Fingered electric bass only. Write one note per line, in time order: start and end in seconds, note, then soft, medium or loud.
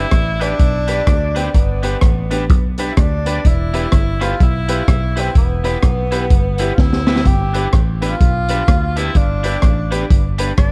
0.12 0.52 A1 medium
0.60 1.00 B1 medium
1.07 1.48 D2 loud
1.55 1.95 G1 loud
2.02 2.50 A1 medium
2.50 2.90 B1 loud
2.98 3.38 D2 loud
3.45 3.85 E1 loud
3.93 4.33 G1 medium
4.41 4.81 B1 loud
4.88 5.28 B1 medium
5.35 5.76 E1 medium
5.83 6.32 B1 medium
6.31 6.71 G1 loud
6.78 7.27 D2 medium
7.26 7.66 G1 loud
7.73 8.13 A1 medium
8.21 8.61 B1 loud
8.68 9.09 D2 loud
9.15 9.56 G1 loud
9.63 10.03 A1 medium
10.11 10.51 G1 medium
10.58 10.72 G1 medium